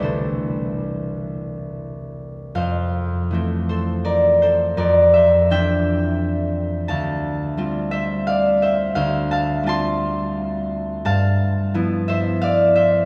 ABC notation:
X:1
M:3/4
L:1/8
Q:1/4=86
K:C
V:1 name="Harp"
[GABcdeg]6 | [K:F] [cf]3 [Ac] [Bd] [Ac] | [Bd] [ce] [eg]4 | [fa]3 [ce] [df] [ce] |
[cf] [fa] [ac']4 | [K:Gmix] [fa]3 [ce] [df] [ce] |]
V:2 name="Harp" clef=bass
[C,,E,G,A,D]6 | [K:F] F,,2 [E,A,C]4 | F,,2 [E,CD]4 | D,,2 [G,CF]4 |
D,,2 [G,CF]4 | [K:Gmix] G,,2 [F,B,E]4 |]